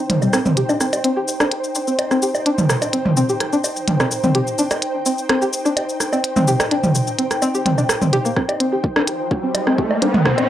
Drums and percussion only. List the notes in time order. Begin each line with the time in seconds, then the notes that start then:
0.10 closed hi-hat, mid tom
0.22 cabasa, low woodblock
0.33 cross-stick, cabasa
0.46 mid tom, cabasa
0.57 closed hi-hat
0.69 cabasa, low woodblock
0.81 cross-stick, cabasa
0.93 closed hi-hat, cabasa, low woodblock
1.04 closed hi-hat
1.28 cabasa
1.40 cross-stick, cabasa
1.51 closed hi-hat
1.64 cabasa
1.75 cabasa
1.88 cabasa
1.99 closed hi-hat, low woodblock
2.11 cross-stick, cabasa
2.22 cabasa
2.35 cabasa, low woodblock
2.46 closed hi-hat
2.58 mid tom, cabasa
2.70 cross-stick, cabasa
2.82 closed hi-hat, cabasa, low woodblock
2.93 closed hi-hat
3.06 mid tom
3.17 cabasa
3.29 cabasa
3.40 cross-stick, closed hi-hat
3.53 cabasa
3.64 cabasa, low woodblock
3.76 cabasa
3.88 closed hi-hat, mid tom
4.00 cross-stick, cabasa, low woodblock
4.11 cabasa
4.24 mid tom, cabasa
4.35 closed hi-hat
4.47 cabasa
4.59 cabasa
4.71 cross-stick, closed hi-hat, cabasa, low woodblock
4.82 closed hi-hat
5.06 cabasa
5.18 cabasa
5.29 cross-stick, closed hi-hat
5.42 cabasa
5.53 cabasa
5.66 cabasa
5.77 closed hi-hat, low woodblock
5.89 cabasa
6.00 cross-stick, cabasa
6.13 cabasa, low woodblock
6.24 closed hi-hat
6.36 mid tom, cabasa
6.48 cabasa
6.60 cross-stick, closed hi-hat, cabasa, low woodblock
6.71 closed hi-hat
6.84 mid tom, cabasa
6.95 cabasa
7.07 cabasa
7.19 closed hi-hat
7.31 cross-stick, closed hi-hat, cabasa
7.42 cabasa, low woodblock
7.55 cabasa
7.66 closed hi-hat, mid tom
7.78 cabasa, low woodblock
7.89 cross-stick, cabasa
8.02 mid tom, cabasa
8.13 closed hi-hat
8.25 cabasa
8.36 kick, cross-stick
8.49 closed hi-hat, low woodblock
8.60 closed hi-hat
8.84 kick
8.96 cross-stick
9.07 closed hi-hat
9.31 kick
9.55 closed hi-hat, low woodblock
9.67 cross-stick
9.78 kick
9.91 low woodblock
10.02 closed hi-hat
10.14 mid tom
10.25 kick, cross-stick
10.38 closed hi-hat, low woodblock